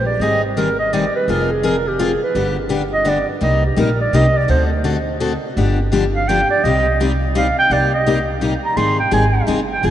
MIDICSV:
0, 0, Header, 1, 4, 480
1, 0, Start_track
1, 0, Key_signature, -3, "minor"
1, 0, Tempo, 356930
1, 277, Time_signature, 3, 2, 24, 8
1, 13319, End_track
2, 0, Start_track
2, 0, Title_t, "Clarinet"
2, 0, Program_c, 0, 71
2, 81, Note_on_c, 0, 74, 81
2, 291, Note_on_c, 0, 75, 92
2, 311, Note_off_c, 0, 74, 0
2, 580, Note_off_c, 0, 75, 0
2, 587, Note_on_c, 0, 67, 51
2, 756, Note_on_c, 0, 70, 76
2, 776, Note_off_c, 0, 67, 0
2, 1053, Note_off_c, 0, 70, 0
2, 1060, Note_on_c, 0, 75, 94
2, 1250, Note_on_c, 0, 74, 82
2, 1271, Note_off_c, 0, 75, 0
2, 1541, Note_off_c, 0, 74, 0
2, 1550, Note_on_c, 0, 71, 90
2, 1749, Note_on_c, 0, 70, 79
2, 1769, Note_off_c, 0, 71, 0
2, 2035, Note_on_c, 0, 68, 85
2, 2055, Note_off_c, 0, 70, 0
2, 2218, Note_on_c, 0, 70, 91
2, 2238, Note_off_c, 0, 68, 0
2, 2521, Note_on_c, 0, 67, 85
2, 2541, Note_off_c, 0, 70, 0
2, 2715, Note_on_c, 0, 68, 84
2, 2735, Note_off_c, 0, 67, 0
2, 2992, Note_off_c, 0, 68, 0
2, 3000, Note_on_c, 0, 71, 88
2, 3437, Note_off_c, 0, 71, 0
2, 3946, Note_on_c, 0, 75, 100
2, 4148, Note_on_c, 0, 74, 89
2, 4168, Note_off_c, 0, 75, 0
2, 4421, Note_off_c, 0, 74, 0
2, 4429, Note_on_c, 0, 71, 50
2, 4612, Note_on_c, 0, 75, 89
2, 4633, Note_off_c, 0, 71, 0
2, 4900, Note_off_c, 0, 75, 0
2, 4908, Note_on_c, 0, 67, 71
2, 5103, Note_on_c, 0, 70, 81
2, 5123, Note_off_c, 0, 67, 0
2, 5386, Note_off_c, 0, 70, 0
2, 5394, Note_on_c, 0, 74, 89
2, 5580, Note_on_c, 0, 75, 102
2, 5600, Note_off_c, 0, 74, 0
2, 5871, Note_on_c, 0, 74, 88
2, 5891, Note_off_c, 0, 75, 0
2, 6043, Note_off_c, 0, 74, 0
2, 6051, Note_on_c, 0, 72, 83
2, 6227, Note_off_c, 0, 72, 0
2, 8280, Note_on_c, 0, 77, 98
2, 8445, Note_on_c, 0, 79, 107
2, 8465, Note_off_c, 0, 77, 0
2, 8735, Note_off_c, 0, 79, 0
2, 8743, Note_on_c, 0, 74, 97
2, 8920, Note_on_c, 0, 75, 91
2, 8941, Note_off_c, 0, 74, 0
2, 9401, Note_off_c, 0, 75, 0
2, 9907, Note_on_c, 0, 77, 96
2, 10170, Note_off_c, 0, 77, 0
2, 10200, Note_on_c, 0, 79, 117
2, 10389, Note_on_c, 0, 74, 89
2, 10409, Note_off_c, 0, 79, 0
2, 10666, Note_off_c, 0, 74, 0
2, 10674, Note_on_c, 0, 75, 89
2, 11112, Note_off_c, 0, 75, 0
2, 11628, Note_on_c, 0, 82, 96
2, 11789, Note_on_c, 0, 84, 102
2, 11810, Note_off_c, 0, 82, 0
2, 12089, Note_off_c, 0, 84, 0
2, 12096, Note_on_c, 0, 79, 88
2, 12267, Note_off_c, 0, 79, 0
2, 12279, Note_on_c, 0, 80, 87
2, 12725, Note_off_c, 0, 80, 0
2, 13056, Note_on_c, 0, 79, 94
2, 13252, Note_on_c, 0, 80, 88
2, 13272, Note_off_c, 0, 79, 0
2, 13319, Note_off_c, 0, 80, 0
2, 13319, End_track
3, 0, Start_track
3, 0, Title_t, "Steel-string acoustic guitar"
3, 0, Program_c, 1, 25
3, 284, Note_on_c, 1, 51, 60
3, 285, Note_on_c, 1, 55, 66
3, 288, Note_on_c, 1, 60, 66
3, 294, Note_on_c, 1, 63, 68
3, 301, Note_on_c, 1, 68, 72
3, 562, Note_off_c, 1, 51, 0
3, 563, Note_off_c, 1, 55, 0
3, 565, Note_off_c, 1, 60, 0
3, 567, Note_off_c, 1, 63, 0
3, 571, Note_off_c, 1, 68, 0
3, 763, Note_on_c, 1, 51, 83
3, 768, Note_on_c, 1, 60, 81
3, 769, Note_on_c, 1, 68, 93
3, 772, Note_on_c, 1, 55, 78
3, 773, Note_on_c, 1, 63, 81
3, 910, Note_off_c, 1, 51, 0
3, 912, Note_off_c, 1, 60, 0
3, 913, Note_off_c, 1, 68, 0
3, 914, Note_off_c, 1, 55, 0
3, 915, Note_off_c, 1, 63, 0
3, 1250, Note_on_c, 1, 51, 87
3, 1255, Note_on_c, 1, 55, 81
3, 1255, Note_on_c, 1, 63, 91
3, 1256, Note_on_c, 1, 60, 83
3, 1266, Note_on_c, 1, 68, 91
3, 1394, Note_off_c, 1, 51, 0
3, 1396, Note_off_c, 1, 55, 0
3, 1396, Note_off_c, 1, 63, 0
3, 1397, Note_off_c, 1, 60, 0
3, 1402, Note_off_c, 1, 68, 0
3, 1722, Note_on_c, 1, 53, 60
3, 1736, Note_on_c, 1, 60, 67
3, 1737, Note_on_c, 1, 65, 69
3, 1743, Note_on_c, 1, 68, 70
3, 2003, Note_off_c, 1, 53, 0
3, 2010, Note_off_c, 1, 60, 0
3, 2010, Note_off_c, 1, 65, 0
3, 2013, Note_off_c, 1, 68, 0
3, 2197, Note_on_c, 1, 60, 88
3, 2198, Note_on_c, 1, 53, 87
3, 2205, Note_on_c, 1, 65, 80
3, 2207, Note_on_c, 1, 68, 102
3, 2348, Note_off_c, 1, 60, 0
3, 2349, Note_off_c, 1, 53, 0
3, 2352, Note_off_c, 1, 65, 0
3, 2353, Note_off_c, 1, 68, 0
3, 2680, Note_on_c, 1, 53, 83
3, 2683, Note_on_c, 1, 65, 99
3, 2684, Note_on_c, 1, 60, 87
3, 2688, Note_on_c, 1, 68, 97
3, 2830, Note_off_c, 1, 53, 0
3, 2831, Note_off_c, 1, 65, 0
3, 2832, Note_off_c, 1, 60, 0
3, 2834, Note_off_c, 1, 68, 0
3, 3162, Note_on_c, 1, 55, 69
3, 3164, Note_on_c, 1, 50, 68
3, 3168, Note_on_c, 1, 59, 74
3, 3169, Note_on_c, 1, 67, 78
3, 3170, Note_on_c, 1, 62, 72
3, 3444, Note_off_c, 1, 55, 0
3, 3445, Note_off_c, 1, 50, 0
3, 3447, Note_off_c, 1, 59, 0
3, 3447, Note_off_c, 1, 67, 0
3, 3448, Note_off_c, 1, 62, 0
3, 3620, Note_on_c, 1, 50, 86
3, 3628, Note_on_c, 1, 59, 88
3, 3629, Note_on_c, 1, 55, 85
3, 3631, Note_on_c, 1, 67, 89
3, 3632, Note_on_c, 1, 62, 85
3, 3781, Note_off_c, 1, 50, 0
3, 3785, Note_off_c, 1, 55, 0
3, 3785, Note_off_c, 1, 59, 0
3, 3786, Note_off_c, 1, 67, 0
3, 3787, Note_off_c, 1, 62, 0
3, 4097, Note_on_c, 1, 50, 90
3, 4102, Note_on_c, 1, 55, 76
3, 4106, Note_on_c, 1, 59, 93
3, 4110, Note_on_c, 1, 62, 81
3, 4115, Note_on_c, 1, 67, 86
3, 4259, Note_off_c, 1, 50, 0
3, 4262, Note_off_c, 1, 55, 0
3, 4264, Note_off_c, 1, 59, 0
3, 4266, Note_off_c, 1, 62, 0
3, 4269, Note_off_c, 1, 67, 0
3, 4581, Note_on_c, 1, 48, 68
3, 4583, Note_on_c, 1, 55, 67
3, 4587, Note_on_c, 1, 58, 65
3, 4590, Note_on_c, 1, 67, 73
3, 4593, Note_on_c, 1, 63, 74
3, 4874, Note_off_c, 1, 48, 0
3, 4875, Note_off_c, 1, 55, 0
3, 4877, Note_off_c, 1, 58, 0
3, 4879, Note_off_c, 1, 67, 0
3, 4880, Note_off_c, 1, 63, 0
3, 5063, Note_on_c, 1, 48, 84
3, 5073, Note_on_c, 1, 55, 78
3, 5075, Note_on_c, 1, 58, 88
3, 5080, Note_on_c, 1, 63, 81
3, 5080, Note_on_c, 1, 67, 90
3, 5223, Note_off_c, 1, 48, 0
3, 5228, Note_off_c, 1, 55, 0
3, 5229, Note_off_c, 1, 58, 0
3, 5231, Note_off_c, 1, 63, 0
3, 5231, Note_off_c, 1, 67, 0
3, 5558, Note_on_c, 1, 48, 82
3, 5570, Note_on_c, 1, 58, 91
3, 5571, Note_on_c, 1, 55, 85
3, 5572, Note_on_c, 1, 67, 95
3, 5577, Note_on_c, 1, 63, 88
3, 5710, Note_off_c, 1, 48, 0
3, 5717, Note_off_c, 1, 55, 0
3, 5717, Note_off_c, 1, 58, 0
3, 5718, Note_off_c, 1, 67, 0
3, 5720, Note_off_c, 1, 63, 0
3, 6026, Note_on_c, 1, 57, 71
3, 6027, Note_on_c, 1, 50, 65
3, 6029, Note_on_c, 1, 69, 74
3, 6030, Note_on_c, 1, 60, 70
3, 6038, Note_on_c, 1, 66, 68
3, 6316, Note_off_c, 1, 57, 0
3, 6317, Note_off_c, 1, 50, 0
3, 6318, Note_off_c, 1, 69, 0
3, 6319, Note_off_c, 1, 60, 0
3, 6323, Note_off_c, 1, 66, 0
3, 6510, Note_on_c, 1, 50, 87
3, 6511, Note_on_c, 1, 57, 88
3, 6515, Note_on_c, 1, 60, 84
3, 6519, Note_on_c, 1, 66, 90
3, 6520, Note_on_c, 1, 69, 90
3, 6666, Note_off_c, 1, 50, 0
3, 6667, Note_off_c, 1, 57, 0
3, 6669, Note_off_c, 1, 60, 0
3, 6671, Note_off_c, 1, 66, 0
3, 6671, Note_off_c, 1, 69, 0
3, 6998, Note_on_c, 1, 50, 88
3, 6999, Note_on_c, 1, 60, 91
3, 7000, Note_on_c, 1, 57, 84
3, 7005, Note_on_c, 1, 69, 99
3, 7009, Note_on_c, 1, 66, 90
3, 7150, Note_off_c, 1, 50, 0
3, 7150, Note_off_c, 1, 60, 0
3, 7151, Note_off_c, 1, 57, 0
3, 7154, Note_off_c, 1, 69, 0
3, 7156, Note_off_c, 1, 66, 0
3, 7489, Note_on_c, 1, 50, 71
3, 7494, Note_on_c, 1, 53, 70
3, 7497, Note_on_c, 1, 59, 77
3, 7502, Note_on_c, 1, 62, 80
3, 7503, Note_on_c, 1, 67, 72
3, 7768, Note_off_c, 1, 50, 0
3, 7770, Note_off_c, 1, 53, 0
3, 7772, Note_off_c, 1, 59, 0
3, 7774, Note_off_c, 1, 62, 0
3, 7775, Note_off_c, 1, 67, 0
3, 7958, Note_on_c, 1, 50, 89
3, 7968, Note_on_c, 1, 62, 97
3, 7969, Note_on_c, 1, 59, 89
3, 7971, Note_on_c, 1, 53, 89
3, 7975, Note_on_c, 1, 67, 102
3, 8110, Note_off_c, 1, 50, 0
3, 8115, Note_off_c, 1, 62, 0
3, 8116, Note_off_c, 1, 53, 0
3, 8116, Note_off_c, 1, 59, 0
3, 8118, Note_off_c, 1, 67, 0
3, 8457, Note_on_c, 1, 50, 90
3, 8462, Note_on_c, 1, 53, 92
3, 8463, Note_on_c, 1, 59, 91
3, 8466, Note_on_c, 1, 62, 93
3, 8468, Note_on_c, 1, 67, 86
3, 8599, Note_off_c, 1, 50, 0
3, 8602, Note_off_c, 1, 53, 0
3, 8602, Note_off_c, 1, 59, 0
3, 8604, Note_off_c, 1, 62, 0
3, 8605, Note_off_c, 1, 67, 0
3, 8943, Note_on_c, 1, 48, 71
3, 8945, Note_on_c, 1, 55, 78
3, 8947, Note_on_c, 1, 60, 78
3, 8953, Note_on_c, 1, 67, 76
3, 8957, Note_on_c, 1, 63, 71
3, 9214, Note_off_c, 1, 48, 0
3, 9215, Note_off_c, 1, 55, 0
3, 9216, Note_off_c, 1, 60, 0
3, 9219, Note_off_c, 1, 67, 0
3, 9221, Note_off_c, 1, 63, 0
3, 9417, Note_on_c, 1, 48, 78
3, 9422, Note_on_c, 1, 55, 89
3, 9422, Note_on_c, 1, 60, 87
3, 9425, Note_on_c, 1, 67, 100
3, 9430, Note_on_c, 1, 63, 94
3, 9558, Note_off_c, 1, 48, 0
3, 9561, Note_off_c, 1, 55, 0
3, 9561, Note_off_c, 1, 60, 0
3, 9563, Note_off_c, 1, 67, 0
3, 9565, Note_off_c, 1, 63, 0
3, 9886, Note_on_c, 1, 55, 90
3, 9887, Note_on_c, 1, 48, 83
3, 9889, Note_on_c, 1, 60, 99
3, 9893, Note_on_c, 1, 63, 83
3, 9896, Note_on_c, 1, 67, 99
3, 10033, Note_off_c, 1, 48, 0
3, 10033, Note_off_c, 1, 55, 0
3, 10034, Note_off_c, 1, 60, 0
3, 10036, Note_off_c, 1, 63, 0
3, 10038, Note_off_c, 1, 67, 0
3, 10362, Note_on_c, 1, 48, 58
3, 10368, Note_on_c, 1, 55, 64
3, 10371, Note_on_c, 1, 58, 70
3, 10372, Note_on_c, 1, 67, 74
3, 10373, Note_on_c, 1, 63, 67
3, 10643, Note_off_c, 1, 48, 0
3, 10646, Note_off_c, 1, 55, 0
3, 10647, Note_off_c, 1, 58, 0
3, 10647, Note_off_c, 1, 67, 0
3, 10648, Note_off_c, 1, 63, 0
3, 10845, Note_on_c, 1, 48, 75
3, 10847, Note_on_c, 1, 55, 73
3, 10849, Note_on_c, 1, 58, 84
3, 10857, Note_on_c, 1, 63, 78
3, 10860, Note_on_c, 1, 67, 96
3, 10992, Note_off_c, 1, 48, 0
3, 10993, Note_off_c, 1, 55, 0
3, 10994, Note_off_c, 1, 58, 0
3, 10998, Note_off_c, 1, 63, 0
3, 11000, Note_off_c, 1, 67, 0
3, 11312, Note_on_c, 1, 48, 73
3, 11313, Note_on_c, 1, 55, 76
3, 11320, Note_on_c, 1, 58, 81
3, 11322, Note_on_c, 1, 67, 87
3, 11323, Note_on_c, 1, 63, 80
3, 11465, Note_off_c, 1, 48, 0
3, 11466, Note_off_c, 1, 55, 0
3, 11469, Note_off_c, 1, 58, 0
3, 11470, Note_off_c, 1, 63, 0
3, 11470, Note_off_c, 1, 67, 0
3, 11791, Note_on_c, 1, 55, 68
3, 11793, Note_on_c, 1, 51, 68
3, 11793, Note_on_c, 1, 60, 72
3, 11793, Note_on_c, 1, 63, 68
3, 11793, Note_on_c, 1, 68, 71
3, 12076, Note_off_c, 1, 55, 0
3, 12077, Note_off_c, 1, 51, 0
3, 12077, Note_off_c, 1, 60, 0
3, 12077, Note_off_c, 1, 63, 0
3, 12077, Note_off_c, 1, 68, 0
3, 12255, Note_on_c, 1, 51, 85
3, 12258, Note_on_c, 1, 60, 85
3, 12259, Note_on_c, 1, 55, 82
3, 12264, Note_on_c, 1, 63, 91
3, 12266, Note_on_c, 1, 68, 96
3, 12416, Note_off_c, 1, 51, 0
3, 12417, Note_off_c, 1, 60, 0
3, 12418, Note_off_c, 1, 55, 0
3, 12420, Note_off_c, 1, 63, 0
3, 12421, Note_off_c, 1, 68, 0
3, 12731, Note_on_c, 1, 51, 78
3, 12739, Note_on_c, 1, 55, 86
3, 12744, Note_on_c, 1, 63, 88
3, 12746, Note_on_c, 1, 60, 92
3, 12749, Note_on_c, 1, 68, 89
3, 12893, Note_off_c, 1, 51, 0
3, 12897, Note_off_c, 1, 55, 0
3, 12900, Note_off_c, 1, 63, 0
3, 12901, Note_off_c, 1, 60, 0
3, 12902, Note_off_c, 1, 68, 0
3, 13217, Note_on_c, 1, 53, 65
3, 13224, Note_on_c, 1, 60, 72
3, 13228, Note_on_c, 1, 65, 67
3, 13235, Note_on_c, 1, 68, 81
3, 13319, Note_off_c, 1, 53, 0
3, 13319, Note_off_c, 1, 60, 0
3, 13319, Note_off_c, 1, 65, 0
3, 13319, Note_off_c, 1, 68, 0
3, 13319, End_track
4, 0, Start_track
4, 0, Title_t, "Upright bass"
4, 0, Program_c, 2, 32
4, 0, Note_on_c, 2, 34, 71
4, 201, Note_off_c, 2, 34, 0
4, 260, Note_on_c, 2, 32, 73
4, 1422, Note_off_c, 2, 32, 0
4, 1718, Note_on_c, 2, 29, 75
4, 2873, Note_off_c, 2, 29, 0
4, 3158, Note_on_c, 2, 31, 75
4, 4313, Note_off_c, 2, 31, 0
4, 4592, Note_on_c, 2, 36, 74
4, 4981, Note_off_c, 2, 36, 0
4, 5067, Note_on_c, 2, 34, 86
4, 5483, Note_off_c, 2, 34, 0
4, 5549, Note_on_c, 2, 36, 75
4, 5964, Note_off_c, 2, 36, 0
4, 6038, Note_on_c, 2, 38, 78
4, 7192, Note_off_c, 2, 38, 0
4, 7485, Note_on_c, 2, 31, 84
4, 8636, Note_off_c, 2, 31, 0
4, 8927, Note_on_c, 2, 36, 77
4, 10076, Note_off_c, 2, 36, 0
4, 10352, Note_on_c, 2, 36, 74
4, 11506, Note_off_c, 2, 36, 0
4, 11789, Note_on_c, 2, 32, 73
4, 12177, Note_off_c, 2, 32, 0
4, 12259, Note_on_c, 2, 32, 82
4, 12675, Note_off_c, 2, 32, 0
4, 12751, Note_on_c, 2, 31, 78
4, 13162, Note_off_c, 2, 31, 0
4, 13227, Note_on_c, 2, 29, 80
4, 13319, Note_off_c, 2, 29, 0
4, 13319, End_track
0, 0, End_of_file